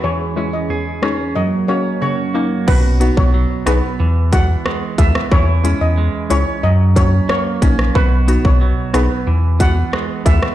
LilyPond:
<<
  \new Staff \with { instrumentName = "Steel pan" } { \time 4/4 \key b \major \tempo 4 = 91 cis''16 r8 dis''8 r16 cis''8 dis''16 r16 cis''16 r16 cis''8. r16 | b'16 r8 cis''8 r16 b'8 r8 fis''16 r8. e''16 r16 | cis''16 r8 dis''8 r16 cis''8 dis''16 r16 cis''16 r16 cis''8. r16 | b'16 r8 cis''8 r16 b'8 r8 fis''16 r8. e''16 r16 | }
  \new Staff \with { instrumentName = "Synth pluck" } { \time 4/4 \key b \major << { r8 <gis cis' e'>8 r8 <gis cis' dis'>8 r8 <ais cis' fis'>8 r8 <ais cis' dis'>8 | r8 <b dis' fis'>8 r8 <b dis' gis'>8 r8 <gis e' fis'>8 r8 <gis e' gis'>8 | r8 <gis cis' e'>8 r8 <gis cis' e'>8 r8 <ais cis' fis'>8 r8 <ais cis' dis'>8 | r8 <b dis' fis'>8 r8 <b dis' gis'>8 r8 <gis e' fis'>8 r8 <gis e' gis'>8 | } \\ { e,4 e,4 fis,4 cis4 | r1 | r1 | r1 | } >> }
  \new Staff \with { instrumentName = "Clean electric guitar" } { \time 4/4 \key b \major e8 cis'8 gis'8 cis'8 fis8 cis'8 fis'8 ais8 | <b, fis'>8 b8 fis8 b8 e8 b8 gis8 b8 | <e e'>8 cis'8 gis8 cis'8 fis8 cis'8 ais8 cis'8 | <b, fis'>8 b8 fis8 b8 e8 b8 gis8 b8 | }
  \new Staff \with { instrumentName = "Analog synth pad" } { \clef bass \time 4/4 \key b \major << { <e, e gis gis'>2 <fis, fis ais cis''>2 | r1 | r1 | r1 | } \\ { cis'1 | r1 | r1 | r1 | } >> }
  \new Staff \with { instrumentName = "Sub bass" } { \clef bass \time 4/4 \key b \major r1 | b,,8. b,,8 r16 b,,16 r16 e,4 r8 dis,16 r16 | e,8. e,8 r16 cis,16 r16 fis,4 r8 ais,,8 | b,,8. b,,8 r16 b,,16 r16 e,4 r8 dis,16 r16 | }
  \new DrumStaff \with { instrumentName = "Drums" } \drummode { \time 4/4 r4 r8 ss8 r4 r4 | <cymc bd>8 hh16 bd16 r8 <hh ss>8 r8 <hh bd>8 ss8 <hh bd>16 ss16 | bd8 hh8 r8 hh8 r8 <hh bd>8 ss8 <hh bd>16 ss16 | bd8 hh16 bd16 r8 <hh ss>8 r8 <hh bd>8 ss8 <hh bd>16 ss16 | }
>>